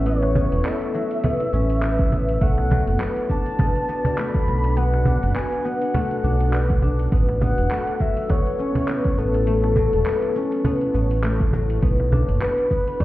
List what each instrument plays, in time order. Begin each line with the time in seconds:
Already playing: analog synth bass A1, guzheng F#3 A3 C#4, ambient pad B3 E4 A4 C#5
0.06 guzheng B3, soft synth lead C#5, closed hi-hat, cabasa
0.22 cajon slap
0.35 guzheng B3, cajon bass, cabasa
0.52 analog synth bass E1, cajon slap, closed hi-hat, cabasa
0.65 guzheng A3, soft synth lead E5, clap, closed hi-hat, cabasa
0.82 closed hi-hat
0.94 guzheng F#3, cabasa
1.11 closed hi-hat, cabasa
1.24 guzheng B3, cajon bass, closed hi-hat, cabasa
1.40 cajon slap, closed hi-hat
1.53 analog synth bass A1, guzheng C#4, cabasa
1.70 closed hi-hat, cabasa
1.83 guzheng B3, soft synth lead E5, clap, closed hi-hat, cabasa
1.99 kick, closed hi-hat, cabasa
2.12 guzheng B3, cajon bass, cabasa
2.29 closed hi-hat, cabasa
2.41 analog synth bass B1, guzheng A3, ambient pad B3 D4 F#4 D5, soft synth lead F#5, kick, closed hi-hat, cabasa
2.58 cajon slap
2.71 guzheng F#3, cajon bass, cabasa
2.87 analog synth bass F#1, cajon slap, closed hi-hat, cabasa
3.00 guzheng B3, clap, closed hi-hat, cabasa
3.17 closed hi-hat
3.30 guzheng D4, soft synth lead A5, kick, cabasa
3.46 closed hi-hat, cabasa
3.59 guzheng B3, kick, cajon bass, closed hi-hat, cabasa
3.76 closed hi-hat
3.89 guzheng B3, cabasa
4.05 cajon bass, closed hi-hat, cabasa
4.18 guzheng A3, soft synth lead B5, clap, closed hi-hat, cabasa
4.34 kick, cajon slap, closed hi-hat, cabasa
4.47 analog synth bass B1, guzheng F#3, cabasa
4.64 cajon slap, closed hi-hat, cabasa
4.77 guzheng B3, soft synth lead F#5, closed hi-hat, cabasa
4.94 cajon slap
5.05 guzheng D4, cajon bass, cabasa
5.23 analog synth bass F#1, cajon slap, closed hi-hat, cabasa
5.35 guzheng B3, soft synth lead G#5, clap, closed hi-hat, cabasa
5.52 closed hi-hat
5.65 guzheng B3, soft synth lead F#5, cabasa
5.82 closed hi-hat, cabasa
5.94 guzheng A3, cajon bass, closed hi-hat, cabasa
6.11 cajon slap, closed hi-hat
6.24 analog synth bass B1, guzheng D4, cabasa
6.40 closed hi-hat, cabasa
6.53 guzheng B3, clap, closed hi-hat, cabasa
6.70 kick, closed hi-hat, cabasa
6.82 guzheng D4, cajon bass, cabasa
6.99 closed hi-hat, cabasa
7.12 analog synth bass A1, ambient pad B3 E4 A4 C#5, guzheng B3, kick, closed hi-hat, cabasa
7.29 cajon slap
7.41 guzheng B3, soft synth lead F#5, cajon bass, cabasa
7.58 analog synth bass E1, cajon slap, closed hi-hat, cabasa
7.71 guzheng A3, clap, closed hi-hat, cabasa
7.87 closed hi-hat
8.00 guzheng F#3, soft synth lead E5, kick, cabasa
8.17 closed hi-hat, cabasa
8.30 guzheng B3, soft synth lead C#5, cajon bass, kick, closed hi-hat, cabasa
8.46 closed hi-hat
8.59 guzheng C#4, cabasa
8.75 cajon bass, closed hi-hat, cabasa
8.88 guzheng B3, clap, closed hi-hat, cabasa
9.05 kick, cajon slap, closed hi-hat, cabasa
9.18 analog synth bass A1, guzheng B3, soft synth lead A4, cabasa
9.34 cajon slap, closed hi-hat, cabasa
9.47 guzheng A3, closed hi-hat, cabasa
9.64 cajon slap
9.76 guzheng F#3, cajon bass, cabasa
9.93 analog synth bass E1, cajon slap, closed hi-hat, cabasa
10.06 guzheng B3, clap, closed hi-hat, cabasa
10.22 closed hi-hat
10.35 guzheng C#4, cabasa
10.52 closed hi-hat, cabasa
10.65 guzheng B3, cajon bass, closed hi-hat, cabasa
10.81 cajon slap, closed hi-hat
10.94 analog synth bass A1, guzheng B3, cabasa
11.11 closed hi-hat, cabasa
11.23 guzheng A3, clap, closed hi-hat, cabasa
11.40 kick, closed hi-hat, cabasa
11.53 guzheng F#3, cajon bass, cabasa
11.70 closed hi-hat, cabasa
11.82 analog synth bass B1, guzheng B3, ambient pad D4 F#4 D5, kick, closed hi-hat, cabasa
12.00 cajon slap
12.12 guzheng D4, cajon bass, cabasa
12.28 analog synth bass F#1, cajon slap, closed hi-hat, cabasa
12.41 guzheng B3, soft synth lead B4, clap, closed hi-hat, cabasa
12.58 closed hi-hat
12.71 guzheng B3, kick, cabasa
12.88 closed hi-hat, cabasa
13.00 guzheng A3, soft synth lead D5, cajon bass, kick, closed hi-hat, cabasa